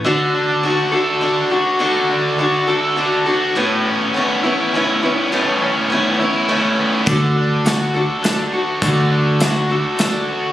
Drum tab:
HH |------|------|------|------|
SD |------|------|------|------|
BD |------|------|------|------|

HH |x-x-x-|x-x-x-|
SD |--o-o-|--o-o-|
BD |o-----|o-----|